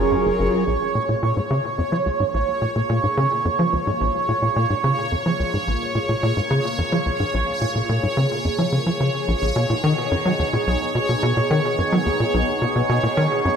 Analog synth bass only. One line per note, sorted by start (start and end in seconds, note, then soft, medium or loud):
0.12 0.15 F#2 medium
0.25 0.32 F#1 medium
0.39 0.49 F#1 loud
0.67 0.77 A#1 medium
0.95 0.99 A#2 medium
1.09 1.15 A#2 medium
1.23 1.32 A#2 loud
1.37 1.40 G#2 medium
1.50 1.60 C#3 loud
1.78 1.82 F2 medium
1.92 1.99 F3 medium
2.06 2.10 C#2 medium
2.20 2.24 G#2 medium
2.34 2.43 A#1 medium
2.62 2.65 A#2 medium
2.76 2.82 A#2 medium
2.90 2.99 A#2 loud
3.03 3.07 G#2 medium
3.17 3.27 C#3 loud
3.45 3.49 F2 medium
3.59 3.65 F3 medium
3.73 3.77 C#2 medium
3.87 3.91 G#2 medium
4.01 4.10 A#1 medium
4.29 4.32 A#2 medium
4.42 4.49 A#2 medium
4.56 4.66 A#2 loud
4.70 4.74 G#2 medium
4.84 4.93 C#3 loud
5.12 5.16 F2 medium
5.26 5.32 F3 medium
5.40 5.43 C#2 medium
5.54 5.57 G#2 medium
5.67 5.77 A#1 medium
5.95 5.99 A#2 medium
6.09 6.15 A#2 medium
6.23 6.32 A#2 loud
6.37 6.40 G#2 medium
6.51 6.60 C#3 loud
6.78 6.82 F2 medium
6.92 6.99 F3 medium
7.06 7.10 C#2 medium
7.20 7.24 G#2 medium
7.34 7.43 A#1 medium
7.61 7.65 A#2 medium
7.75 7.82 A#2 medium
7.89 7.99 A#2 loud
8.03 8.07 G#2 medium
8.17 8.27 C#3 loud
8.45 8.49 F2 medium
8.58 8.65 F3 medium
8.72 8.79 C#3 medium
8.86 8.90 F3 medium
9.00 9.10 C#3 medium
9.28 9.34 A#1 loud
9.42 9.52 A#1 medium
9.56 9.65 B2 loud
9.70 9.74 A#2 medium
9.84 9.93 D#3 loud
10.11 10.15 F#2 medium
10.25 10.32 F#3 medium
10.39 10.43 D#2 medium
10.53 10.57 A#2 medium
10.67 10.77 B1 medium
10.95 10.99 B2 medium
11.09 11.15 B2 medium
11.23 11.32 B2 loud
11.37 11.40 A#2 medium
11.51 11.60 D#3 loud
11.78 11.82 F#2 medium
11.92 11.99 F#3 medium
12.06 12.10 D#2 medium
12.20 12.24 A#2 medium
12.34 12.43 B1 medium
12.62 12.65 B2 medium
12.76 12.82 B2 medium
12.89 12.99 B2 loud
13.03 13.07 A#2 medium
13.17 13.27 D#3 loud
13.45 13.49 F#2 medium